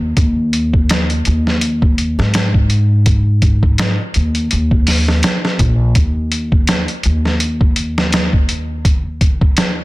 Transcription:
Already playing: D#2
0.17 D#2, kick, closed hi-hat
0.53 closed hi-hat
0.73 kick
0.89 snare, closed hi-hat
1.10 closed hi-hat
1.25 D#2, closed hi-hat
1.47 snare
1.61 closed hi-hat
1.82 kick
1.98 closed hi-hat
2.19 G#2, snare
2.34 snare, closed hi-hat
2.54 kick
2.70 closed hi-hat
3.06 kick, closed hi-hat
3.42 kick, closed hi-hat
3.63 kick
3.78 snare, closed hi-hat
4.14 D#2, closed hi-hat
4.35 closed hi-hat
4.51 D#2, closed hi-hat
4.71 kick
4.87 snare, open hi-hat
5.08 snare
5.23 snare, closed hi-hat
5.45 snare
5.59 A#1, kick, closed hi-hat
5.95 D#2, kick, closed hi-hat
6.32 closed hi-hat
6.52 kick
6.67 snare, closed hi-hat
6.88 closed hi-hat
7.03 D#2, closed hi-hat
7.25 snare
7.40 closed hi-hat
7.61 kick
7.76 closed hi-hat
7.98 snare
8.12 snare, closed hi-hat
8.33 kick
8.49 closed hi-hat
8.85 kick, closed hi-hat
9.21 kick, closed hi-hat
9.41 kick
9.57 snare, closed hi-hat

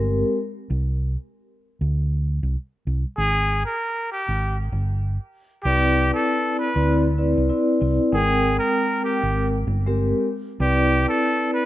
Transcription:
Already playing: G1 G#3 C4 G4 A#4
0.70 C2
1.81 D2
2.43 C2
2.87 C2
3.18 G#1 G#4
3.66 A#4
4.12 G4
4.28 G#1
4.72 G1
5.64 C2 C4 E4 G4 B4 D5
6.14 A4
6.59 B4
6.75 D2 C4 E4 B4 D5
7.18 C4 E4 B4 D5
7.38 C2
7.49 C4 E4 B4 D5
7.81 C2 C4 E4 B4 D5
8.12 G#1 G#3 C4 G#4 A#4 G5
8.59 A#4
9.04 G4
9.23 G#1
9.67 G1
9.86 G#3 C4 G4 A#4
10.60 C2 C4 E4 G4 B4 D5
11.09 A4
11.54 B4

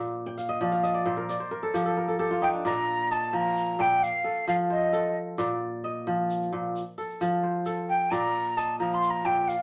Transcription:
Already playing: A#2 C5
0.26 G5
0.38 F5, shaker
0.49 D#5
0.61 F3 D5
0.72 F5, shaker
0.83 D#5, shaker
0.94 D5
1.06 A#2 C5
1.17 A#4
1.29 D5, shaker
1.40 C5
1.51 A#4
1.63 A4
1.74 F3 G4, shaker
1.86 A4
1.97 A#4
2.08 A4
2.19 G4 A4
2.31 F4
2.42 D#4 G5
2.53 D4
2.65 A#2 D5 A#5, shaker
3.11 D#5 A5, shaker
3.33 F3 A#5
3.46 shaker
3.57 shaker
3.79 A#2 G5
4.03 F5, shaker
4.24 A4
4.48 F3 F5, shaker
4.70 C5 D#5
4.93 A4, shaker
5.38 A#2 D5, shaker
5.84 D#5
6.07 F3
6.30 shaker
6.42 shaker
6.53 A#2
6.76 shaker
6.98 A4, shaker
7.10 shaker
7.21 F3, shaker
7.43 C5
7.66 A4, shaker
7.89 G5
8.11 A#2 D5 A#5, shaker
8.57 D#5 A5, shaker
8.80 F3 A#5
8.92 C6, shaker
9.03 shaker
9.10 A#5
9.25 A#2 G5
9.48 F5, shaker

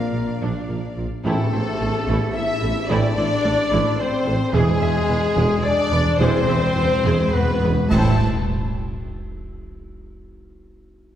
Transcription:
Already playing: F3 A#3 D4 A#4 D5 F5
0.13 A#1 A#2 F4
0.41 A#1 A#2 D4
0.69 A#1 A#2 A#4
0.97 A#1 A#2 F4
1.24 A1 A2 E3 A3 C4 E4 A4, tam-tam
1.52 A1 A2 E4 C5
1.80 A1 A2 C4 A4
2.07 A1 A2 A3 E4
2.34 E4 E5
2.62 A1 A2 C4 A4
2.88 A1 A2 E3 A3 C4 D4 E4 D5
3.17 A1 A2 E4 C5
3.44 A1 A2 C4 A4
3.71 A1 A2 A3 E4
3.99 C4 C5
4.26 A1 A2 C4 A4
4.53 E1 E2 E3 G#3 E4 G#4
4.61 E2
4.68 E2
4.76 E2
4.81 E1 E2 E4 E5
4.91 E2
4.98 E2
5.06 E1 E2 B3 B4
5.13 E2
5.21 E2
5.28 E2
5.36 E1 E2 G#3 G#4
5.44 E2
5.51 E2
5.59 E2 D5
5.64 E2 D4 D5
5.74 E2
5.81 E2
5.89 E1 E2 B3 B4
5.98 E2
6.05 E2
6.13 E2
6.19 E1 E2 E3 G#3 C4 E4 G#4 C5
6.28 E2
6.35 E2
6.43 E2
6.47 E1 E2 E4 E5
6.58 E2
6.66 E2
6.74 E1 E2 B3 B4
6.81 E2
6.89 E2
6.96 E2
7.04 E1 E2 G#3 G#4
7.12 E2
7.19 E2
7.28 E2
7.33 E2 B3 B4
7.44 E2
7.51 E2
7.59 E1 E2
7.63 B3 B4
7.68 E2
7.75 E2
7.84 E2
7.91 A1 A2 E3 A3 C4 E4 A4 C5 A5, concert bass drum, crash

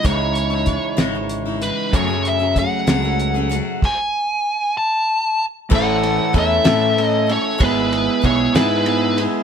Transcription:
0.03 C#2 C#3 E3 G#3 D#4 E4 C#5, kick, closed hi-hat
0.22 G#3
0.35 closed hi-hat
0.50 G#3 D#4 E4
0.66 E3 G#3, kick, closed hi-hat
0.97 G#1 C#3 E3 G#3 D#4 E4, snare, closed hi-hat
1.15 G#3
1.29 closed hi-hat
1.46 G#3 D#4 E4
1.61 E3 G#3 D#4 E4 B4, closed hi-hat
1.93 F#2 C#3 F#3 A3 C#4 G#4 C#5, kick, closed hi-hat
2.08 F#3 A3 C#4 G#4
2.25 E5, closed hi-hat
2.39 F#3 A3 C#4 G#4
2.56 F#3 A3 C#4 G#4 F#5, kick, closed hi-hat
2.87 C#2 F#2 C#3 F#3 A3 C#4 G#4, snare, closed hi-hat
3.02 F#3 A3 C#4 G#4
3.19 closed hi-hat
3.34 F#3 A3 C#4 G#4
3.49 F#3 A3 C#4 G#4, closed hi-hat
3.82 G#5, kick, crash
4.77 A5
5.70 A1 A2 E3 A3 C#4 A4 C#5 A5 E6, kick, crash
5.75 F#5
6.01 A3 C#4 A4, ride
6.33 E2 E3 A3 C#4 A4, kick, ride
6.38 E5
6.64 A2 E3 A3 C#4 A4, snare, ride
6.96 E3 A3 C#4 A4, ride
7.02 D#5
7.27 A3 C#4 A4, ride
7.32 C#5
7.58 G#1 G#3 B3 E4 G#4 G#5, kick, ride
7.62 B4
7.92 B3 E4 G#4, ride
8.22 B1 G#3 B3 E4 G#4, kick, ride
8.26 C#5
8.55 G#2 G#3 B3 E4 G#4 B4, snare, ride
8.85 G#3 B3 E4 G#4, ride
9.17 B3 E4 G#4, ride

